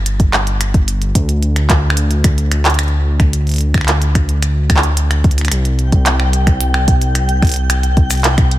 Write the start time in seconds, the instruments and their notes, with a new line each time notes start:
Already playing: detuned saw bass G1
0.06 closed hi-hat
0.20 kick, closed hi-hat
0.33 finger snap, clap
0.47 closed hi-hat
0.61 finger snap, closed hi-hat
0.74 kick, closed hi-hat
0.88 closed hi-hat
1.02 closed hi-hat
1.15 detuned saw bass D2, kick, closed hi-hat
1.29 closed hi-hat
1.43 closed hi-hat
1.56 finger snap, closed hi-hat
1.70 kick, clap, closed hi-hat
1.90 finger snap
1.97 closed hi-hat
2.11 closed hi-hat
2.24 finger snap, kick, closed hi-hat
2.38 closed hi-hat
2.52 finger snap, closed hi-hat
2.65 clap, closed hi-hat
2.70 closed hi-hat
2.74 closed hi-hat
2.79 finger snap, closed hi-hat
2.88 closed hi-hat
3.20 finger snap, kick, closed hi-hat
3.33 closed hi-hat
3.47 closed hi-hat
3.49 closed hi-hat
3.52 closed hi-hat
3.54 closed hi-hat
3.56 closed hi-hat
3.58 closed hi-hat
3.61 closed hi-hat
3.74 finger snap, kick, closed hi-hat
3.78 finger snap
3.81 finger snap
3.85 finger snap, clap, closed hi-hat
4.02 closed hi-hat
4.15 finger snap, kick, closed hi-hat
4.29 closed hi-hat
4.42 finger snap, closed hi-hat
4.70 finger snap, kick, closed hi-hat
4.77 clap
4.83 closed hi-hat
4.97 closed hi-hat
5.11 finger snap, closed hi-hat
5.24 kick, closed hi-hat
5.31 closed hi-hat
5.38 finger snap, closed hi-hat
5.41 finger snap
5.45 finger snap, closed hi-hat
5.48 detuned saw bass C2, synth texture G5, finger snap
5.52 finger snap, closed hi-hat
5.65 closed hi-hat
5.79 closed hi-hat
5.92 kick, closed hi-hat
6.06 clap, closed hi-hat
6.20 finger snap
6.33 closed hi-hat
6.47 finger snap, kick, closed hi-hat
6.61 closed hi-hat
6.74 finger snap
6.88 kick, closed hi-hat
7.02 closed hi-hat
7.15 finger snap, closed hi-hat
7.29 closed hi-hat
7.42 finger snap, kick, closed hi-hat
7.45 closed hi-hat
7.47 closed hi-hat
7.49 closed hi-hat
7.52 closed hi-hat
7.54 closed hi-hat
7.56 closed hi-hat
7.70 finger snap, closed hi-hat
7.83 closed hi-hat
7.97 kick, closed hi-hat
8.11 finger snap, closed hi-hat, cabasa
8.13 closed hi-hat
8.15 closed hi-hat
8.17 closed hi-hat
8.20 closed hi-hat
8.22 clap, closed hi-hat
8.24 closed hi-hat
8.38 finger snap, kick, closed hi-hat
8.52 closed hi-hat